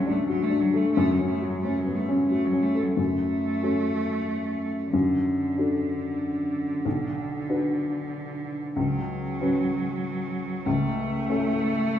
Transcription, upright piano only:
0.00 0.91 D2 medium
0.00 0.97 C#4 soft
0.00 0.06 D4 soft
0.00 0.29 F#4 medium
0.06 0.41 D4 medium
0.29 0.64 F#4 medium
0.50 0.86 D4 soft
0.74 0.95 A4 soft
0.97 2.95 F#2 medium
1.19 1.54 C#4 soft
1.41 1.77 F#4 medium
1.65 2.00 C#4 soft
1.86 2.08 B3 soft
2.08 2.44 C#4 soft
2.31 2.67 F#4 soft
2.53 2.89 C#4 soft
2.75 2.97 A4 soft
2.97 3.61 F#2 medium
3.63 4.89 C#4 soft
3.63 4.89 F#4 soft
3.63 4.89 A4 soft
4.93 5.55 F#2 medium
5.58 6.81 D4 soft
5.58 6.82 F#4 soft
5.58 6.82 A4 soft
6.85 7.47 B1 medium
7.49 8.72 D4 soft
7.49 8.73 F#4 soft
7.49 8.73 B4 soft
8.76 9.38 C#2 medium
9.41 10.63 C#4 soft
9.41 10.63 F#4 soft
9.41 10.63 B4 soft
10.66 11.27 C#2 medium
11.29 11.99 C#4 soft
11.29 11.99 E4 soft
11.29 11.99 A4 soft

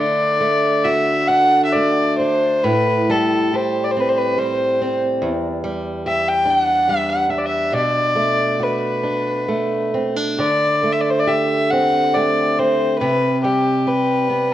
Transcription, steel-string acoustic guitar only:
0.00 2.64 D3 medium
0.00 0.40 A3 soft
0.41 1.75 A3 soft
0.85 2.73 F#4 soft
1.29 2.19 D4 soft
1.75 3.09 A3 soft
2.20 2.73 D4 soft
2.64 5.22 A2 medium
3.10 4.37 G3 medium
3.54 6.06 G4 soft
3.97 4.80 C4 soft
4.38 5.63 G3 soft
4.82 5.31 C4 soft
5.22 7.73 E2 medium
5.64 6.88 G3 medium
6.06 7.82 G4 soft
6.45 7.29 D4 soft
6.89 7.82 G3 soft
7.29 9.03 D4 soft
7.72 10.40 B2 medium
8.16 9.48 A3 soft
8.60 10.49 F#4 soft
9.03 9.94 D4 soft
9.48 10.83 A3 soft
9.94 10.16 C4 soft
10.16 10.48 D4 soft
10.38 13.01 D3 soft
10.83 12.15 A3 soft
11.27 13.87 G4 soft
11.72 12.58 C4 soft
12.16 13.10 A3 soft
12.59 14.29 C4 soft
13.01 14.54 C3 medium
13.44 14.54 G3 soft
13.87 14.54 G4 soft
14.30 14.54 B3 soft

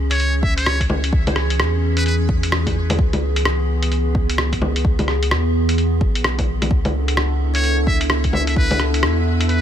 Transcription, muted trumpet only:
0.11 0.35 C#5 medium
0.43 0.54 E5 medium
0.57 0.81 C#5 medium
1.97 2.03 B4 medium
2.06 2.15 B4 medium
7.55 7.79 C#5 loud
7.87 7.99 E5 medium
8.34 8.43 E5 medium
8.48 8.54 E5 medium
8.57 8.82 B4 medium
9.50 9.61 B4 loud

